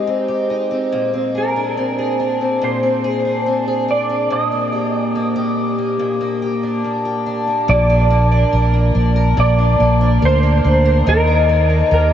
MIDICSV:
0, 0, Header, 1, 4, 480
1, 0, Start_track
1, 0, Tempo, 845070
1, 525, Time_signature, 4, 2, 24, 8
1, 6890, End_track
2, 0, Start_track
2, 0, Title_t, "Electric slide guitar"
2, 0, Program_c, 0, 29
2, 783, Note_on_c, 0, 70, 62
2, 1500, Note_on_c, 0, 72, 62
2, 1515, Note_off_c, 0, 70, 0
2, 2216, Note_off_c, 0, 72, 0
2, 2219, Note_on_c, 0, 74, 83
2, 2453, Note_off_c, 0, 74, 0
2, 2455, Note_on_c, 0, 75, 89
2, 3868, Note_off_c, 0, 75, 0
2, 4371, Note_on_c, 0, 74, 106
2, 5065, Note_off_c, 0, 74, 0
2, 5338, Note_on_c, 0, 74, 94
2, 5821, Note_off_c, 0, 74, 0
2, 5824, Note_on_c, 0, 72, 97
2, 6298, Note_on_c, 0, 70, 96
2, 6309, Note_off_c, 0, 72, 0
2, 6773, Note_off_c, 0, 70, 0
2, 6780, Note_on_c, 0, 70, 71
2, 6890, Note_off_c, 0, 70, 0
2, 6890, End_track
3, 0, Start_track
3, 0, Title_t, "Twelve-string acoustic guitar"
3, 0, Program_c, 1, 25
3, 0, Note_on_c, 1, 56, 64
3, 0, Note_on_c, 1, 63, 52
3, 0, Note_on_c, 1, 67, 50
3, 41, Note_on_c, 1, 60, 57
3, 154, Note_off_c, 1, 67, 0
3, 161, Note_on_c, 1, 67, 58
3, 277, Note_off_c, 1, 63, 0
3, 284, Note_on_c, 1, 63, 51
3, 400, Note_off_c, 1, 60, 0
3, 402, Note_on_c, 1, 60, 52
3, 524, Note_on_c, 1, 46, 71
3, 571, Note_off_c, 1, 67, 0
3, 573, Note_off_c, 1, 63, 0
3, 643, Note_off_c, 1, 60, 0
3, 645, Note_on_c, 1, 60, 53
3, 766, Note_on_c, 1, 68, 54
3, 887, Note_on_c, 1, 62, 50
3, 904, Note_off_c, 1, 56, 0
3, 1001, Note_off_c, 1, 60, 0
3, 1008, Note_on_c, 1, 60, 52
3, 1121, Note_off_c, 1, 68, 0
3, 1128, Note_on_c, 1, 68, 55
3, 1246, Note_off_c, 1, 62, 0
3, 1248, Note_on_c, 1, 62, 53
3, 1361, Note_off_c, 1, 60, 0
3, 1368, Note_on_c, 1, 60, 48
3, 1478, Note_off_c, 1, 46, 0
3, 1485, Note_on_c, 1, 46, 72
3, 1600, Note_off_c, 1, 60, 0
3, 1606, Note_on_c, 1, 60, 52
3, 1720, Note_off_c, 1, 68, 0
3, 1727, Note_on_c, 1, 68, 56
3, 1843, Note_off_c, 1, 62, 0
3, 1846, Note_on_c, 1, 62, 49
3, 1959, Note_off_c, 1, 60, 0
3, 1966, Note_on_c, 1, 60, 56
3, 2081, Note_off_c, 1, 68, 0
3, 2088, Note_on_c, 1, 68, 53
3, 2204, Note_off_c, 1, 62, 0
3, 2206, Note_on_c, 1, 62, 56
3, 2318, Note_off_c, 1, 60, 0
3, 2325, Note_on_c, 1, 60, 47
3, 2438, Note_off_c, 1, 46, 0
3, 2445, Note_on_c, 1, 46, 65
3, 2493, Note_off_c, 1, 60, 0
3, 2494, Note_off_c, 1, 68, 0
3, 2566, Note_on_c, 1, 58, 52
3, 2683, Note_on_c, 1, 67, 48
3, 2925, Note_off_c, 1, 58, 0
3, 2927, Note_on_c, 1, 58, 56
3, 3037, Note_off_c, 1, 67, 0
3, 3044, Note_on_c, 1, 67, 63
3, 3283, Note_off_c, 1, 58, 0
3, 3285, Note_on_c, 1, 58, 41
3, 3397, Note_off_c, 1, 46, 0
3, 3404, Note_on_c, 1, 46, 69
3, 3523, Note_off_c, 1, 58, 0
3, 3525, Note_on_c, 1, 58, 50
3, 3640, Note_off_c, 1, 67, 0
3, 3647, Note_on_c, 1, 67, 53
3, 3765, Note_off_c, 1, 62, 0
3, 3767, Note_on_c, 1, 62, 47
3, 3884, Note_off_c, 1, 58, 0
3, 3886, Note_on_c, 1, 58, 50
3, 3998, Note_off_c, 1, 67, 0
3, 4005, Note_on_c, 1, 67, 50
3, 4123, Note_off_c, 1, 62, 0
3, 4125, Note_on_c, 1, 62, 48
3, 4243, Note_off_c, 1, 58, 0
3, 4245, Note_on_c, 1, 58, 46
3, 4356, Note_off_c, 1, 46, 0
3, 4362, Note_on_c, 1, 46, 82
3, 4413, Note_off_c, 1, 67, 0
3, 4483, Note_off_c, 1, 62, 0
3, 4485, Note_on_c, 1, 62, 59
3, 4600, Note_off_c, 1, 58, 0
3, 4602, Note_on_c, 1, 58, 58
3, 4716, Note_off_c, 1, 62, 0
3, 4723, Note_on_c, 1, 62, 61
3, 4842, Note_on_c, 1, 70, 62
3, 4959, Note_off_c, 1, 58, 0
3, 4961, Note_on_c, 1, 58, 56
3, 5075, Note_off_c, 1, 62, 0
3, 5082, Note_on_c, 1, 62, 56
3, 5200, Note_off_c, 1, 70, 0
3, 5202, Note_on_c, 1, 70, 63
3, 5315, Note_off_c, 1, 46, 0
3, 5322, Note_on_c, 1, 46, 81
3, 5437, Note_off_c, 1, 62, 0
3, 5444, Note_on_c, 1, 62, 55
3, 5563, Note_off_c, 1, 58, 0
3, 5565, Note_on_c, 1, 58, 58
3, 5678, Note_off_c, 1, 62, 0
3, 5685, Note_on_c, 1, 62, 57
3, 5803, Note_off_c, 1, 70, 0
3, 5806, Note_on_c, 1, 70, 71
3, 5922, Note_off_c, 1, 58, 0
3, 5924, Note_on_c, 1, 58, 61
3, 6039, Note_off_c, 1, 62, 0
3, 6046, Note_on_c, 1, 62, 60
3, 6163, Note_off_c, 1, 70, 0
3, 6165, Note_on_c, 1, 70, 63
3, 6286, Note_on_c, 1, 51, 91
3, 6332, Note_off_c, 1, 46, 0
3, 6334, Note_off_c, 1, 62, 0
3, 6403, Note_on_c, 1, 63, 57
3, 6524, Note_off_c, 1, 58, 0
3, 6526, Note_on_c, 1, 58, 62
3, 6638, Note_off_c, 1, 63, 0
3, 6644, Note_on_c, 1, 63, 62
3, 6764, Note_off_c, 1, 70, 0
3, 6766, Note_on_c, 1, 67, 67
3, 6880, Note_off_c, 1, 58, 0
3, 6890, Note_off_c, 1, 51, 0
3, 6890, Note_off_c, 1, 63, 0
3, 6890, Note_off_c, 1, 67, 0
3, 6890, End_track
4, 0, Start_track
4, 0, Title_t, "Fingered electric bass"
4, 0, Program_c, 2, 33
4, 4367, Note_on_c, 2, 34, 109
4, 4788, Note_off_c, 2, 34, 0
4, 4844, Note_on_c, 2, 34, 92
4, 5056, Note_off_c, 2, 34, 0
4, 5085, Note_on_c, 2, 34, 96
4, 5296, Note_off_c, 2, 34, 0
4, 5324, Note_on_c, 2, 34, 94
4, 5536, Note_off_c, 2, 34, 0
4, 5565, Note_on_c, 2, 34, 84
4, 5776, Note_off_c, 2, 34, 0
4, 5805, Note_on_c, 2, 38, 91
4, 6016, Note_off_c, 2, 38, 0
4, 6048, Note_on_c, 2, 38, 91
4, 6258, Note_off_c, 2, 38, 0
4, 6287, Note_on_c, 2, 39, 113
4, 6709, Note_off_c, 2, 39, 0
4, 6766, Note_on_c, 2, 39, 95
4, 6890, Note_off_c, 2, 39, 0
4, 6890, End_track
0, 0, End_of_file